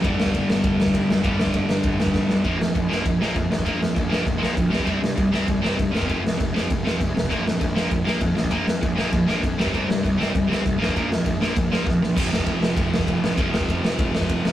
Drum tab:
CC |----------------|----------------|x---x---x---x---|x---x---x---x---|
RD |x---x---x---x---|x---x---x-------|----------------|----------------|
SD |--o---o---o---o-|--o---o---o-o-o-|--o---o---o---o-|--o---o---o---o-|
BD |o--oo---o--oo---|o--oo---o--oo---|o---o---o---o--o|o---o---o---o--o|

CC |x---x---x---x---|x---x---x---x---|x---x---x---x---|x---x---x---x---|
RD |----------------|----------------|----------------|----------------|
SD |--o---o---o---o-|--o---o---o---o-|--o---o---o---o-|--o---o---o---o-|
BD |o---o---o---o--o|o---o---o---o--o|o---o---o---o--o|o---o---o---o--o|

CC |x---x---x---x---|x---x---x-------|x---------------|----------------|
RD |----------------|----------------|----x---x---x---|x---x---x---x---|
SD |--o---o---o---o-|--o---o---o-o-o-|--o---o---o---o-|--o---o---o---o-|
BD |o---o---o---o--o|o---o---o---o---|o--oo---o--oo---|o--oo---o--oo---|